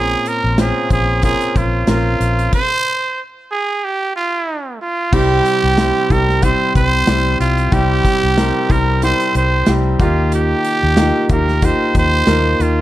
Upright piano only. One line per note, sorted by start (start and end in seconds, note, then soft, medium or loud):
0.00 0.54 A#2 medium
0.00 0.51 C4 medium
0.00 0.51 C#4 medium
0.00 0.51 F4 medium
0.00 0.51 A#4 medium
0.58 1.18 C4 medium
0.58 1.18 C#4 medium
0.58 1.18 F4 medium
0.58 1.19 C5 medium
1.23 1.83 C4 medium
1.23 1.83 C#4 medium
1.23 1.83 F4 medium
1.23 1.84 A#4 medium
1.88 2.48 C4 medium
1.88 2.48 C#4 medium
1.88 2.48 F4 medium
1.88 2.49 A#4 medium
5.12 6.06 C3 medium
5.12 5.73 G3 medium
5.12 5.73 C4 medium
5.12 5.73 E4 medium
5.12 5.73 G4 loud
5.78 6.08 G3 medium
5.78 6.08 C4 medium
5.78 6.08 E4 medium
5.78 6.08 G4 medium
6.11 6.40 G3 medium
6.11 6.40 C4 medium
6.11 6.41 E4 medium
6.11 6.41 G4 medium
6.42 7.03 G3 medium
6.42 7.02 C4 medium
6.42 7.03 E4 medium
6.42 7.03 G4 medium
7.07 7.67 G3 medium
7.07 7.67 C4 medium
7.07 7.67 E4 medium
7.07 7.67 G4 medium
7.72 8.66 C3 medium
7.72 8.32 G3 loud
7.72 8.32 C4 medium
7.72 8.32 E4 medium
7.72 8.32 G4 loud
8.37 8.68 G3 medium
8.37 8.67 C4 medium
8.37 8.67 E4 medium
8.37 8.68 A#4 medium
8.69 9.00 G3 medium
8.69 9.00 C4 medium
8.69 9.00 E4 medium
8.69 9.00 A#4 medium
9.03 9.63 G3 medium
9.03 9.63 C4 medium
9.03 9.63 E4 medium
9.03 9.63 G4 medium
9.67 10.00 G3 medium
9.67 10.00 C4 medium
9.67 10.00 E4 medium
9.67 9.99 G4 medium
10.00 10.93 D#3 medium
10.00 10.90 A#3 medium
10.00 10.90 D#4 medium
10.00 10.90 F4 medium
10.00 10.90 G4 medium
10.97 11.28 A#3 medium
10.97 11.28 D#4 medium
10.97 11.27 F4 medium
10.97 11.28 G4 medium
11.30 11.60 A#3 medium
11.30 11.60 D#4 medium
11.30 11.60 F4 medium
11.30 11.60 G4 medium
11.62 12.23 A#3 medium
11.62 12.22 D#4 medium
11.62 12.22 F4 medium
11.62 12.23 G4 medium
12.27 12.81 A#3 medium
12.27 12.81 D#4 medium
12.27 12.81 F4 medium
12.27 12.81 A#4 medium
12.59 12.81 D#3 medium